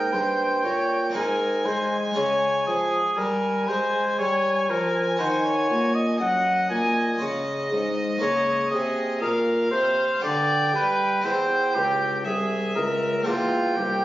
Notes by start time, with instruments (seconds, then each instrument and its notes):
Already playing: bassoon G#2, harpsichord A#3 C#4 G4, trumpet A#4, violin G5
0.13 harpsichord G2, bassoon G2, trumpet C5
0.63 harpsichord A#2, bassoon A#2, trumpet C#5
1.10 harpsichord C4 D#4 G#4
1.14 harpsichord G#2, bassoon G#2, trumpet A#4, violin G#5
1.64 harpsichord G#3, bassoon G#3, trumpet C5
2.11 harpsichord G#3 F4 G#4
2.15 harpsichord C#3, bassoon C#3, trumpet C#5
2.67 harpsichord F3, bassoon F3, trumpet G#4
3.17 bassoon G3, harpsichord G3, trumpet A#4, violin G#5
3.68 harpsichord G#3, bassoon G#3, trumpet C5
4.19 harpsichord G3, bassoon G3, trumpet C#5
4.69 bassoon F3, harpsichord F3, trumpet A#4
5.17 harpsichord D#3 F#4 C5, bassoon D#3, trumpet C5
5.45 trumpet C#5
5.70 bassoon A#2, harpsichord A#2
5.95 trumpet D#5
6.19 bassoon F#2, harpsichord F#2, violin D#5, trumpet F#5
6.69 harpsichord A#2, bassoon A#2, trumpet G#5
7.16 harpsichord G#3 F4 C#5
7.21 harpsichord C#3, bassoon C#3
7.72 harpsichord G#2, bassoon G#2
8.17 harpsichord A#3 F4 A#4, trumpet C#5
8.21 harpsichord C#3, bassoon C#3
8.71 bassoon C3, harpsichord C3, trumpet G#4
9.22 bassoon A#2, harpsichord A#2, trumpet A#4, violin F5
9.71 bassoon C3, harpsichord C3, trumpet C5
10.19 harpsichord B3 F4 G4, violin G5
10.23 bassoon D3, harpsichord D3, trumpet D5
10.73 bassoon G3, harpsichord G3, trumpet B4
11.20 harpsichord C4 E4 G4, violin G5
11.24 harpsichord E2, bassoon E2, trumpet C5
11.75 harpsichord C#2, bassoon C#2, trumpet G4
12.24 harpsichord C2, bassoon C2, trumpet G#4, violin E5
12.76 bassoon C#2, harpsichord C#2, trumpet A#4
13.22 bassoon E2, harpsichord A#3 C4 G4, violin G5
13.26 harpsichord E2, trumpet F4
13.76 bassoon C2, harpsichord C2, trumpet G4